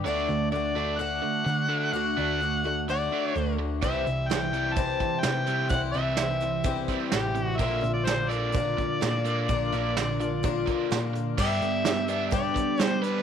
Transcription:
0.04 D2 D3 A3 D4 F#4 D5
0.28 D2 D3 A3 D4 F#4
0.32 A3
0.51 D3 A3 D4 D5
0.56 F#4
0.75 D3 A3 D4 F#4
0.99 D3 A3 D4 F#4 F#5
1.22 D3 A3
1.45 D3 A3 D4
1.49 F#4
1.69 D3 A3 D4
1.92 D2 D3 A3 D4 F#4 F#5
2.17 D2 D3 A3 D4 F#4
2.40 D3 A3 D4 F#4
2.64 D3 A3 D4 F#4
2.88 D3 A3 D4 F#4 D5
3.12 D3 A3 D4
3.34 D2 D3 A3 D4 F#4
3.59 D3 A3
3.82 C2 C3 E3 G3 C4 E4 E5, kick, closed hi-hat
4.06 C2 C3 E3 G3 C4 E4, closed hi-hat
4.28 C3 E3 G3 C4 G5, snare, closed hi-hat
4.32 E4
4.53 C3 E3 G3, closed hi-hat
4.73 C3 A5, kick, closed hi-hat
4.77 C3 E3 G3 C4 E4
5.00 C3 E3, kick, closed hi-hat
5.19 G5, snare, closed hi-hat
5.24 C3 E3 G3 C4 E4
5.46 C3 E3 G3, closed hi-hat
5.69 C2 C3 E3 F#5, kick, closed hi-hat
5.73 G3 C4 E4
5.93 C2 C3 E3 G3 C4 E4 E5, closed hi-hat
5.99 G3
6.17 C3 E3, snare, closed hi-hat
6.21 G3 C4 E4
6.40 C3 E3 C4 E4, closed hi-hat
6.45 G3
6.64 C3 E3 G3 C4 E4, kick, closed hi-hat
6.88 C3 E3 G3, kick, closed hi-hat
7.11 A1 C3 E3 G3 C4 G4, snare, closed hi-hat
7.16 E4
7.35 C3 E3, closed hi-hat
7.45 F#4
7.57 A#1 A#2 D3 A#3 D4 F4 E5, kick, closed hi-hat
7.81 A#1 A#2 D3 A#3 D4 F4, closed hi-hat
7.93 D5
8.05 A#2 D3 A#3 D4 F4 C5, snare, closed hi-hat
8.29 A#2 D3 A#3 D4 F4 D5, closed hi-hat
8.33 A#3
8.52 A#2 D3 A#3 D4 F4, kick, closed hi-hat
8.77 A#2 D3, kick, closed hi-hat
9.01 A#2 D3 A#3 D4 F4, snare, closed hi-hat
9.25 A#2 D3 A#3, closed hi-hat
9.49 A#1 A#2 D3 A#3 D4 F4, kick, closed hi-hat
9.72 A#1 A#2 D3 A#3 D4 F4, closed hi-hat
9.96 A#2 D3 A#3 D4, snare, closed hi-hat
10.00 F4
10.20 A#2 D3 D4 F4, closed hi-hat
10.24 A#3
10.43 A#2 D3 A#3 D4 F4, kick, closed hi-hat
10.66 A#2 D3 A#3, kick, closed hi-hat
10.90 A#2 D3 A#3 D4 F4, snare, closed hi-hat
11.13 A#2 D3, closed hi-hat
11.38 G2 D3 G3 B3 D4 G4 E5, kick, crash
11.61 G2 G3 B3, closed hi-hat
11.85 G3 B3 D4 G4, snare, closed hi-hat
12.08 G3 B3 D4 G4, closed hi-hat
12.31 G2 D3 G3 B3 D4 G4 D5, kick, closed hi-hat
12.55 G3 B3, kick, closed hi-hat
12.77 G3 B3 D4 G4, snare, closed hi-hat
12.83 C5
13.02 G3 B3 D4 B4, closed hi-hat

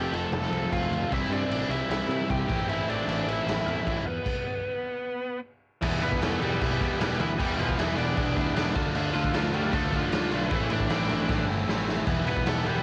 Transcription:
Already playing: F2 C3 F3 A3 C4 F4 G4 G5
0.12 F1 C3 F3 A4 A5, crash
0.17 F2
0.32 F1 A4 A5, snare, crash
0.51 C2, crash
0.72 F1 F4 F5, kick, crash
0.91 D2, crash
1.12 C2 C3 E3 G3 C4 E4 E5, kick, crash
1.30 G2 D4 D5, crash
1.50 A1, crash
1.69 C2 G3 C4 E4 E5, crash
1.74 C3
1.89 C2 E4 E5, snare, crash
2.09 C3, crash
2.30 C2 G4 G5, kick, crash
2.48 A1 A2 E3 A3 C4 E4, kick, crash
2.69 A1 E4 E5, crash
2.88 A1 D4 D5, crash
3.07 A1 A2 E3 A3, crash
3.26 A1 E4 E5, crash
3.46 A1 E4 E5, snare, crash
3.66 E2, crash
3.87 A1, kick, crash
4.05 E2 B3 B4, crash
4.26 kick, crash
5.81 E1 E2 B2 E3 G3 B3 E4, kick, crash
6.00 E1 E2 B2 E3 G3 B3 E4 B4, crash
6.12 kick
6.20 E1 E2 B2 E3 G3 A3 B3 E4 A4, snare, crash
6.40 E1 E2 B2 E3 G3 B3 E4 G4, crash
6.61 E1 E2 B2 E3 G3 B3 E4 G4, kick, crash
6.80 E2 B2 E3 G3 B3 E4, kick, crash
6.99 E1 E2 B2 E3 G3 B3 E4, snare, crash
7.19 D2 E2 B2 E3 G3 B3 E4, crash
7.38 E1 E2 B2 E3 G3 B3 E4 G4, kick, crash
7.58 E1 E2 B2 E3 F3 G3 B3 E4 F4, crash
7.69 kick
7.77 E1 E2 B2 E3 G3 B3 E4, snare, crash
7.96 E1 E2 B2 E3 G3 B3 D4 E4 D5, crash
8.15 E1 E2 B2 E3 G3 B3 E4, kick, crash
8.36 D2 E2 B2 E3 G3 B3 E4, kick, crash
8.55 E1 E2 B2 E3 G3 B3 E4, snare, crash
8.74 D2 D3 A3 D4 F4, kick, crash
8.95 D2 D3 A3 D4 F4, crash
9.14 D2 D3 F3 A3 D4 F4, crash
9.24 kick
9.34 D2 D3 A3 D4 F4, snare, crash
9.53 D2 D3 G3 A3 D4 F4 G4, crash
9.72 D2 D3 A3 D4 F4 A4, kick, crash
9.91 D3 A3 D4 F4, kick, crash
9.96 F3 F4
10.12 D2 D3 A3 D4 F4, snare, crash
10.31 B1 D3 E3 A3 D4 E4 F4, crash
10.51 A1 A2 E3 A3 C4 E4, kick, crash
10.70 A1 A2 E3 A3 C4 D4 E4 D5, crash
10.80 kick
10.89 A1 A2 E3 A3 C4 E4, snare, crash
11.08 A1 A2 E3 A3 C4 E4, crash
11.28 A1 A2 E3 A3 C4 E4, kick, snare
11.47 G1 A2 E3 A3 C4 E4
11.67 A1 A2 E3 A3 C4 E4, snare
11.87 A2 E3 A3 C4 E4, snare
12.05 E1 E2 B2 E3 G3 B3 E4, kick, crash
12.25 E1 E2 B2 E3 G3 B3 E4, crash
12.30 B4
12.37 kick
12.45 E1 E2 B2 E3 G3 A3 B3 E4 A4, snare, crash
12.65 E1 E2 B2 E3 G3 B3 E4 G4, crash

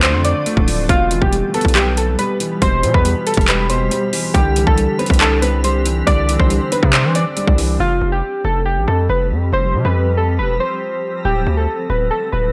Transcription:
Already playing: D2 D3 F3 A3 C4 D4 F4
0.02 D4 C5, clap, closed hi-hat
0.14 F2
0.25 C4 D5, closed hi-hat
0.46 A3, closed hi-hat
0.57 D1, kick
0.68 F3, open hi-hat
0.89 E1 B2 G3 F4 G4, kick, closed hi-hat
1.11 E3, closed hi-hat
1.21 E1 G4, kick
1.32 G3, closed hi-hat
1.54 B3 A4, closed hi-hat
1.61 B1, kick, closed hi-hat
1.68 closed hi-hat
1.75 G4 B4, clap, closed hi-hat
1.97 A4, closed hi-hat
2.19 G3 B4, closed hi-hat
2.40 E3, closed hi-hat
2.62 E1 B2 C5, kick, closed hi-hat
2.83 B2 E3, closed hi-hat
2.94 E2 B4, kick
3.05 G3, closed hi-hat
3.27 A4, closed hi-hat
3.34 E1, kick, closed hi-hat
3.41 closed hi-hat
3.48 G4 B4, clap, closed hi-hat
3.70 B2 C5, closed hi-hat
3.91 G3, closed hi-hat
4.13 E3, open hi-hat
4.34 C2 D3 C4 D4 G4, kick, closed hi-hat
4.56 E3, closed hi-hat
4.67 C2 A4, kick
4.78 G3, closed hi-hat
4.99 C4 B4, closed hi-hat
5.06 C2, kick, closed hi-hat
5.14 closed hi-hat
5.21 D4 A4, clap, closed hi-hat
5.42 C4 B4, closed hi-hat
5.64 G3 C5, closed hi-hat
5.85 E3, closed hi-hat
6.07 C2 D3 D5, kick, closed hi-hat
6.29 E3, closed hi-hat
6.39 C2 C5, kick
6.50 G3, closed hi-hat
6.72 C4 B4, closed hi-hat
6.83 C3, kick
6.93 D4 C5, clap, closed hi-hat
7.04 E3
7.15 C4 D5, closed hi-hat
7.37 G3, closed hi-hat
7.47 C2, kick
7.58 E3, open hi-hat
7.80 F1 F3 G3 C4 F4 G4
8.01 F1
8.12 G4
8.45 F1 A4
8.65 G4
8.77 A1
8.87 F2 A4
9.09 F1 B4
9.31 F2
9.53 F1 C5
9.74 C3
9.85 F2 B4
10.17 A4
10.39 E1 B4
10.60 C5
11.25 D1 D3 A3 F4 G4
11.47 D2
11.57 A4
11.90 D1 B4
12.11 A4
12.32 D1 B4

